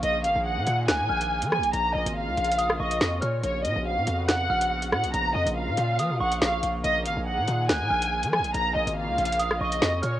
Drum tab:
HH |x-----x-----------x-----x--------x-----x-----x--|x--------x--------x-x-x-x--------x--------x-----|x-----x-----------x-----x--------x-----x-----x--|x--------x--------x-----x--------x--------x-----|
SD |------------------------o-----------------r-----|---------------------------r--------o-----------|------------------------o-----------------r-----|------------------------------------o-----------|

HH |x-----x-----------x-----x--------x-----x-----x--|x--------x--------x-x-x-x--------x--------x-----|
SD |------------------------o-----------------r-----|---------------------------r--------o-----------|